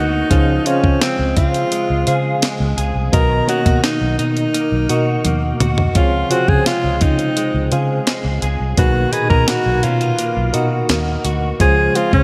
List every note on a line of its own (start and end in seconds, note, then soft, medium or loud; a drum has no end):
0.00 0.22 D2 medium
0.00 0.31 D#3 medium
0.00 0.38 A#3 medium
0.00 0.32 D#4 medium
0.00 0.38 D#4 medium
0.00 0.68 D#4 medium
0.00 0.38 F#4 medium
0.00 0.33 A#4 medium
0.00 0.33 D#5 medium
0.00 0.33 F#5 medium
0.30 0.57 C#2 loud
0.30 1.32 C#3 medium
0.30 3.13 F3 medium
0.30 0.55 C#4 medium
0.30 0.55 G#4 medium
0.30 0.56 C5 medium
0.30 0.56 F5 medium
0.30 kick medium
0.30 closed hi-hat medium
0.65 1.36 C4 medium
0.65 1.01 C#4 medium
0.65 1.65 F4 medium
0.65 1.66 G#4 medium
0.65 1.66 C5 medium
0.65 1.66 F5 medium
0.65 closed hi-hat medium
0.84 0.97 C#3 medium
0.84 kick medium
1.01 1.71 G#3 medium
1.01 1.34 C4 medium
1.01 snare loud
1.01 closed hi-hat medium
1.19 1.32 C#2 medium
1.37 1.63 C#3 medium
1.37 3.20 C4 medium
1.37 2.39 F4 medium
1.37 kick medium
1.37 closed hi-hat medium
1.54 closed hi-hat soft
1.72 2.42 G#3 medium
1.72 closed hi-hat medium
1.90 2.03 C#2 medium
2.07 2.82 C#3 medium
2.07 2.34 C#3 medium
2.07 2.82 G#4 medium
2.07 2.76 G#4 medium
2.07 2.82 C5 medium
2.07 2.82 F5 medium
2.07 closed hi-hat medium
2.42 3.20 G#3 medium
2.42 snare loud
2.42 closed hi-hat medium
2.60 2.73 C#2 medium
2.78 2.91 C#2 medium
2.78 3.20 G#4 medium
2.78 closed hi-hat medium
2.96 3.09 C2 medium
3.12 3.40 B1 medium
3.12 4.15 B2 medium
3.12 5.95 D#3 medium
3.12 3.37 B3 medium
3.12 3.38 F#4 medium
3.12 3.38 A#4 medium
3.12 3.46 A#4 medium
3.12 3.38 D#5 medium
3.12 kick medium
3.12 closed hi-hat medium
3.48 4.48 A#3 medium
3.48 3.66 C#4 medium
3.48 4.48 F#4 medium
3.48 3.82 F#4 medium
3.48 4.48 A#4 medium
3.48 4.48 D#5 medium
3.48 closed hi-hat medium
3.66 3.79 B2 medium
3.66 4.17 D#4 soft
3.66 kick medium
3.66 closed hi-hat medium
3.84 4.53 A#3 medium
3.84 4.16 D#4 medium
3.84 snare loud
3.84 closed hi-hat medium
4.01 4.15 B1 medium
4.19 4.45 B2 medium
4.19 6.02 D#4 medium
4.19 5.56 D#4 medium
4.19 closed hi-hat medium
4.37 closed hi-hat soft
4.54 5.24 A#3 medium
4.54 closed hi-hat medium
4.72 4.85 B1 medium
4.89 5.64 B2 medium
4.89 5.16 B2 medium
4.89 5.59 F#4 medium
4.89 5.64 F#4 medium
4.89 5.64 A#4 medium
4.89 5.65 D#5 medium
4.89 closed hi-hat medium
5.25 5.51 D#2 medium
5.25 6.03 A#3 medium
5.25 closed hi-hat medium
5.25 high tom soft
5.60 5.87 D2 medium
5.60 6.03 F#4 medium
5.60 closed hi-hat medium
5.60 mid tom medium
5.78 floor tom medium
5.95 6.22 C#2 loud
5.95 6.97 C#3 medium
5.95 8.77 F3 medium
5.95 6.20 C4 medium
5.95 6.20 F4 medium
5.95 6.32 F4 medium
5.95 6.20 G#4 medium
5.95 6.21 C#5 medium
5.95 kick loud
5.95 closed hi-hat medium
6.30 7.30 C3 medium
6.30 7.01 C4 medium
6.30 7.30 F4 medium
6.30 6.50 F#4 medium
6.30 7.30 G#4 medium
6.30 7.31 C5 medium
6.30 closed hi-hat medium
6.48 6.62 C#3 medium
6.48 6.66 G#4 medium
6.48 kick medium
6.66 7.36 G#3 medium
6.66 7.03 F4 medium
6.66 snare loud
6.66 closed hi-hat medium
6.84 6.97 C#2 medium
7.01 7.28 C#3 medium
7.01 8.85 C4 soft
7.01 7.72 D#4 medium
7.01 kick medium
7.01 closed hi-hat medium
7.19 closed hi-hat soft
7.37 8.06 G#3 medium
7.37 closed hi-hat medium
7.54 7.68 C#2 medium
7.72 7.98 C#3 medium
7.72 8.47 F4 medium
7.72 8.41 G#4 medium
7.72 8.47 G#4 medium
7.72 8.47 C5 medium
7.72 8.47 F5 medium
7.72 closed hi-hat medium
8.07 8.85 G#3 medium
8.07 snare loud
8.07 closed hi-hat medium
8.25 8.38 C#2 medium
8.42 8.56 C#2 medium
8.42 8.85 G#4 medium
8.42 closed hi-hat medium
8.60 8.73 C2 medium
8.77 9.04 B1 loud
8.77 9.80 B2 medium
8.77 11.60 D#3 medium
8.77 9.03 A#3 medium
8.77 9.03 D#4 medium
8.77 9.03 F#4 medium
8.77 9.14 F#4 medium
8.77 9.03 B4 medium
8.77 kick medium
8.77 closed hi-hat medium
9.12 10.12 A#2 medium
9.12 10.12 D#4 medium
9.12 9.83 D#4 medium
9.12 10.13 F#4 medium
9.12 9.29 G#4 medium
9.12 10.13 B5 medium
9.12 closed hi-hat medium
9.30 9.44 B2 medium
9.30 9.49 A#4 loud
9.30 kick medium
9.48 10.18 A#3 medium
9.48 9.85 F#4 medium
9.48 snare loud
9.48 closed hi-hat medium
9.66 9.79 B1 medium
9.83 10.10 B2 medium
9.83 10.01 C#4 medium
9.83 10.54 F4 medium
9.83 closed hi-hat medium
10.01 11.67 D#4 soft
10.01 closed hi-hat soft
10.19 10.89 A#3 medium
10.19 closed hi-hat medium
10.37 10.50 B1 medium
10.53 10.81 B2 medium
10.53 11.28 D#4 medium
10.53 11.29 F#4 medium
10.53 11.24 F#4 medium
10.53 11.28 A#4 medium
10.53 11.29 D#5 medium
10.53 closed hi-hat medium
10.89 11.16 D#2 medium
10.89 11.67 A#3 medium
10.89 snare medium
10.89 closed hi-hat medium
11.25 11.51 D2 medium
11.25 11.67 F#4 medium
11.25 closed hi-hat medium
11.59 11.87 C#2 loud
11.59 12.23 C#3 medium
11.59 12.23 F3 medium
11.59 11.85 G#3 medium
11.59 11.85 C#4 medium
11.59 11.85 F4 medium
11.59 11.98 G#4 loud
11.59 11.85 C5 medium
11.59 kick medium
11.59 closed hi-hat medium
11.95 12.23 G#3 medium
11.95 12.23 C4 medium
11.95 12.23 F4 medium
11.95 12.13 F4 medium
11.95 12.23 C5 medium
11.95 closed hi-hat medium
12.13 12.23 C#3 medium
12.13 12.23 C#4 medium
12.13 kick medium